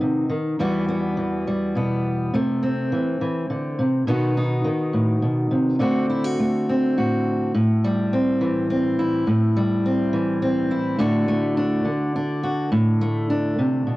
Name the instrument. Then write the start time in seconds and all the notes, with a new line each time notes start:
steel-string acoustic guitar
Already playing: D#3 B3 D#4
0.01 C3
0.29 D#3
0.59 E2 E3 G3 B3 F#4
0.89 B3
1.17 E3
1.47 G3
1.75 B2 B3
2.34 C3 A3
2.63 C4
2.92 E3
3.21 E3
3.50 D3
3.79 C3
4.07 B2 D#3 B3 D#4 F#4
4.37 D#4
4.64 D#3
4.93 A2
5.22 B2
5.51 C3
5.79 D3 A3 C4 F#4
6.10 E4
6.24 F#4
6.39 A3
6.69 C4
6.97 A2 F#4
7.54 A2
7.84 G3
8.13 C4
8.41 E3
8.70 C4
8.99 E4
9.27 A2
9.57 G3
9.86 C4
10.13 E3
10.42 C4
10.71 E4
10.98 A2 D3 A3 D4 F#4
11.28 A3
11.57 D4
11.85 D3
12.16 D4
12.43 F#4
12.72 A2
13.01 A3
13.30 D4
13.59 C3
13.87 B2